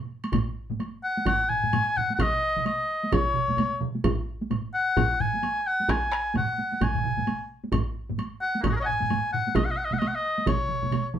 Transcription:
0.24 taiko high, high woodblock
0.32 taiko, taiko low-mid, taiko high, high woodblock
0.70 taiko low-mid, taiko high
0.80 taiko high, high woodblock
1.03 F#5
1.17 taiko high
1.26 F#5, taiko, taiko low-mid, taiko high, high woodblock
1.49 G#5, taiko low-mid
1.63 taiko low-mid, taiko high
1.73 taiko low-mid, taiko high, high woodblock
1.97 F#5, taiko low-mid
2.10 taiko high
2.15 F#5, taiko
2.19 D#5, taiko mid, taiko high, high woodblock
2.56 taiko mid
2.66 D#5, taiko high, high woodblock
3.03 taiko high
3.12 C#5, taiko, taiko mid, taiko high, high woodblock
3.35 taiko mid
3.48 taiko mid, taiko high
3.57 taiko mid, taiko high, high woodblock
3.81 taiko mid
3.95 taiko high
4.04 taiko, taiko low-mid, taiko high, high woodblock
4.41 taiko high
4.50 taiko low-mid, taiko high, high woodblock
4.74 F#5
4.96 taiko, taiko low-mid, taiko high, high woodblock
5.20 G#5, taiko low-mid
5.33 taiko high
5.43 taiko high, high woodblock
5.67 F#5
5.80 taiko high
5.89 G#5, taiko rim, taiko, taiko high, high woodblock
6.12 taiko rim
6.35 F#5, taiko low-mid, taiko mid, taiko high, high woodblock
6.58 taiko high
6.72 taiko high
6.81 G#5, taiko, taiko low-mid, taiko mid, taiko high, high woodblock
6.95 taiko low-mid, taiko mid
7.04 taiko low-mid, taiko mid
7.17 taiko low-mid, taiko mid, taiko high
7.27 taiko high, high woodblock
7.64 taiko high
7.72 taiko, taiko low-mid, taiko high, high woodblock
8.09 taiko low-mid, taiko high
8.18 taiko high, high woodblock
8.41 F#5
8.55 taiko high
8.60 A#3 C#4, taiko, high woodblock
8.65 D#4, taiko low-mid, taiko high
8.69 F#4 G#4
8.76 A#4 C#5
8.82 D#5 F#5
8.86 G#5, taiko low-mid
9.01 taiko low-mid, taiko high
9.10 taiko low-mid, taiko high, high woodblock
9.32 F#5, taiko low-mid
9.47 taiko high
9.55 D#5, taiko, taiko mid, taiko high, high woodblock
9.65 F#5
9.71 D#5
9.77 F#5
9.85 D#5
9.91 F#5, taiko mid, taiko high
9.99 D#5, taiko high, high woodblock
10.07 F#5
10.15 D#5
10.38 taiko high
10.46 C#5, taiko, taiko mid, taiko high, high woodblock
10.69 taiko mid
10.82 taiko mid, taiko high
10.91 taiko mid, taiko high, high woodblock
11.14 taiko mid

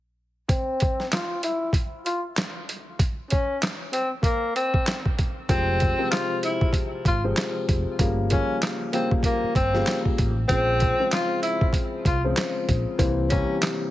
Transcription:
0.49 C4, kick, closed hi-hat
0.80 kick, closed hi-hat
1.00 snare
1.12 F4, snare, clap, closed hi-hat
1.43 E4, closed hi-hat
1.73 kick, closed hi-hat
2.06 F4, closed hi-hat
2.37 snare, clap, closed hi-hat
2.69 closed hi-hat
2.99 kick, closed hi-hat
3.30 C#4, kick, closed hi-hat
3.62 snare, clap, closed hi-hat
3.93 C4, closed hi-hat
4.23 A#3, kick, closed hi-hat
4.56 C4, closed hi-hat
4.74 kick
4.87 snare, clap, closed hi-hat
5.06 kick
5.19 kick, closed hi-hat
5.49 F1 C3 F3 G#3 C4, kick, closed hi-hat
5.80 kick, closed hi-hat
5.99 C3 F3 G#3 C4
6.11 F4, snare, clap, closed hi-hat
6.43 E4, closed hi-hat
6.61 kick
6.73 kick, closed hi-hat
7.05 G#1 F4, kick, closed hi-hat
7.24 C3 F3 G#3 C4
7.37 snare, clap, closed hi-hat
7.69 F1, kick, closed hi-hat
7.99 G1 C#3 F3 G3 A#3, kick, closed hi-hat
8.30 C#3 F3 G3 A#3 C#4, kick, closed hi-hat
8.62 snare, clap, closed hi-hat
8.93 C#3 F3 G3 A#3 C4, closed hi-hat
9.11 kick
9.23 A#3, kick, closed hi-hat
9.43 muted fingered electric bass stroke
9.55 G1 C4, kick, closed hi-hat
9.74 C#3 F3 G3 A#3, snare
9.87 snare, clap, closed hi-hat
10.05 kick
10.18 A1, kick, closed hi-hat
10.48 A#1 C#3 F3 G#3 C4, kick, closed hi-hat
10.80 kick, closed hi-hat
10.99 C#3 F3 G#3 C4
11.12 F4, snare, clap, closed hi-hat
11.42 E4, closed hi-hat
11.61 kick
11.73 kick, closed hi-hat
12.05 C2 F4, kick, closed hi-hat
12.24 C#3 F3 G#3 C4
12.37 snare, clap, closed hi-hat
12.69 A#1, kick, closed hi-hat
12.98 C2 E3 G3 A#3 C4, kick, closed hi-hat
13.30 C3 E3 G3 A#3 C#4, kick, closed hi-hat
13.62 snare, clap, closed hi-hat

